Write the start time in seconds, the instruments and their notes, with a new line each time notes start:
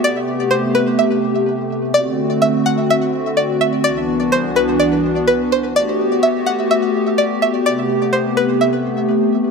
Already playing: analog synth pad A3 B3
0.04 analog synth pad C3 G4, synth pluck D5
0.51 synth pluck C5
0.75 synth pluck B4
0.99 synth pluck E5
1.94 analog synth pad D3 C4 F#4, synth pluck D5
2.42 synth pluck E5
2.66 synth pluck F#5
2.90 synth pluck E5
3.37 synth pluck D5
3.61 synth pluck E5
3.84 analog synth pad C2 E3 B3 D4, synth pluck D5
4.32 synth pluck C5
4.56 synth pluck B4
4.80 synth pluck D5
5.27 synth pluck B4
5.52 synth pluck C5
5.75 analog synth pad A3 B3 F#4 G4, synth pluck D5
6.23 synth pluck E5
6.46 synth pluck F#5
6.71 synth pluck E5
7.18 synth pluck D5
7.42 synth pluck E5
7.66 analog synth pad C3 B3, synth pluck D5
8.13 synth pluck C5
8.37 synth pluck B4
8.61 synth pluck E5